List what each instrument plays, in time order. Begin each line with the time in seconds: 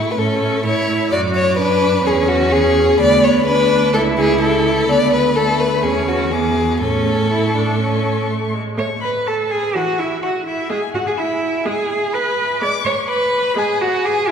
Already playing: viola A3, violin E4 C#6
0.11 violin B4
0.17 cello A2, viola C#4, violin A4 C#6
0.41 cello A2, violin C#6
0.64 cello A2, viola E4, violin C#5 C#6
0.88 cello A2, violin C#6
1.11 cello F#2, viola F#4, violin D5 D6
1.35 violin C#5
1.57 viola D4, violin B4
2.05 cello E2, viola C#4, violin G#4 C#6
2.28 violin F#4
2.52 violin G#4
2.99 cello D2, viola B3, violin D5 B5
3.24 violin C#5
3.46 viola D4, violin B4
3.93 cello C#2, viola E4, violin A4 C#6
4.18 violin G#4
4.41 violin A4
4.88 cello D2, viola B3, violin D5 B5
5.13 violin B4
5.36 viola A3, violin A4 B5
5.60 violin B4
5.83 cello E2, viola C#4, violin G#4 C#6
6.08 violin F#4
6.32 viola B3, violin G#4 D6
6.81 cello A2, viola C#4, violin A4 C#6
7.31 viola E4
7.56 viola D4
7.80 viola C#4
8.30 viola A3
8.54 viola G#3
8.78 viola A3, cello C#5, violin C#6
9.01 cello B4, violin B5
9.27 cello A4, violin A5 C#6
9.50 cello G#4, violin G#5
9.75 viola E3, cello F#4, violin F#5
9.98 cello E4, violin E5
10.22 cello F#4, violin F#5 C#6
10.45 cello E4, violin E5
10.70 viola G#3, cello G#4, violin G#5
10.94 cello F#4, violin F#5
11.06 cello G#4, violin G#5
11.18 cello E4, violin E5 B5
11.65 viola G#3, cello G#4, violin G#5
12.13 cello B4, violin B5
12.62 viola G#3, cello D5, violin D6
12.84 cello C#5, violin C#6
13.08 cello B4, violin B5 D6
13.56 viola G#3, cello G#4, violin G#5
13.81 cello F#4, violin F#5
14.04 cello G#4, violin G#5 D6